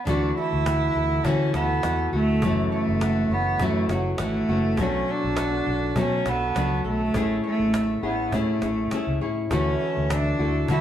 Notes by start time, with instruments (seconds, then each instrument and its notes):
0.05 fingered electric bass D2, nylon-string guitar D3 E3 A3 E4 F#4, mandolin A3, cello D4, cajon bass
0.37 cello E4, mandolin A4
0.53 fingered electric bass D2
0.66 mandolin F#5, cajon slap
0.95 fingered electric bass D2, mandolin A4
1.24 nylon-string guitar D3 E3 A3 E4 F#4, fingered electric bass D3, cello C#4, mandolin E4, cajon bass
1.53 fingered electric bass D2, nylon-string guitar A3 E4 F#4, cello B3, mandolin A4, cajon slap
1.83 fingered electric bass E2, nylon-string guitar E3 A3 E4 F#4, mandolin F#5, cajon slap
2.13 fingered electric bass D2, cello A3, nylon-string guitar A3 E4 F#4, mandolin A4
2.42 fingered electric bass F#1, nylon-string guitar F#2 C#3 E3 A3, mandolin A3, cajon bass
2.46 nylon-string guitar C#4 F#4
2.72 cello A3, mandolin C#5
2.88 fingered electric bass F#1
3.01 mandolin F#5, cajon slap
3.29 fingered electric bass F#1, mandolin C#5
3.33 cello B3
3.59 fingered electric bass F#2, nylon-string guitar F#2 C#3 E3 A3 C#4 F#4, cello A3, mandolin E4, cajon bass
3.88 fingered electric bass F#1, nylon-string guitar A3 C#4 F#4, mandolin C#5, cajon slap
3.92 nylon-string guitar E3, cello F#3
4.18 fingered electric bass G#1, nylon-string guitar E3 A3 C#4 F#4, mandolin F#5, cajon slap
4.22 cello A3
4.48 fingered electric bass F#1, nylon-string guitar E3 A3 C#4 F#4, mandolin C#5
4.77 fingered electric bass B1, nylon-string guitar B2 F#3 A3, mandolin A3, cello C#4, cajon bass
4.82 nylon-string guitar D4 F#4
5.08 cello D4, mandolin A4
5.24 fingered electric bass B1
5.37 mandolin F#5, cajon slap
5.66 fingered electric bass B1, mandolin A4
5.96 nylon-string guitar B2 F#3 A3 D4 F#4, fingered electric bass B2, cello C#4, mandolin D4, cajon bass
6.26 fingered electric bass B1, nylon-string guitar A3 D4 F#4, cello B3, mandolin A4, cajon slap
6.55 fingered electric bass C#2, nylon-string guitar F#3 A3 D4 F#4, mandolin F#5, cajon slap
6.84 fingered electric bass B1, cello A3, mandolin A4
7.14 fingered electric bass A1, nylon-string guitar A3 C#4 E4 G#4, cajon bass
7.44 cello A3, mandolin C#5
7.60 fingered electric bass A1
7.73 mandolin E5, cajon slap
8.03 fingered electric bass A1, cello B3, nylon-string guitar C#4 E4 G#4, mandolin C#5
8.32 fingered electric bass A2, nylon-string guitar A3 C#4 E4 G#4, cello A3, mandolin E4, cajon bass
8.61 fingered electric bass A1, nylon-string guitar E4 G#4, mandolin C#5, cajon slap
8.65 nylon-string guitar C#4
8.91 nylon-string guitar A3 C#4 E4 G#4, mandolin E5, muted fingered electric bass stroke, cajon slap
9.07 fingered electric bass C#2
9.21 fingered electric bass A2, nylon-string guitar C#4 E4 G#4, mandolin C#5
9.51 fingered electric bass D2, nylon-string guitar D3 E3 A3 E4 F#4, mandolin A3, cello C#4, cajon bass
9.81 mandolin A4
9.97 fingered electric bass D2
10.10 cello D4, mandolin E5, cajon slap
10.39 fingered electric bass D2, nylon-string guitar A3 E4 F#4, mandolin A4
10.68 fingered electric bass D3, nylon-string guitar D3 E3 A3 E4 F#4, cello E4, mandolin F#4, cajon bass